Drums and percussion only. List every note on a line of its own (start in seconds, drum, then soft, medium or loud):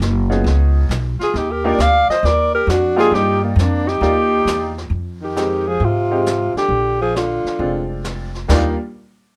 0.01 snare medium
0.01 hi-hat pedal soft
0.31 snare soft
0.46 brush sweep medium
0.46 snare soft
0.90 snare medium
0.90 hi-hat pedal medium
1.21 snare soft
1.35 brush sweep medium
1.35 snare soft
1.80 snare medium
1.80 hi-hat pedal medium
2.10 snare soft
2.25 brush sweep soft
2.25 snare soft
2.69 snare medium
2.69 hi-hat pedal medium
2.99 snare soft
3.15 brush sweep soft
3.15 snare soft
3.58 snare medium
3.58 hi-hat pedal soft
3.88 snare soft
4.03 brush sweep medium
4.03 snare soft
4.47 snare medium
4.47 hi-hat pedal medium
4.78 snare soft
4.92 brush sweep soft
5.37 snare medium
5.37 hi-hat pedal soft
5.82 brush sweep soft
6.26 snare medium
6.26 hi-hat pedal medium
6.57 snare soft
6.72 brush sweep medium
7.16 snare medium
7.16 hi-hat pedal soft
7.46 snare soft
7.61 brush sweep medium
8.04 snare medium
8.04 hi-hat pedal medium
8.35 snare soft
8.49 kick medium
8.49 snare medium
8.49 crash medium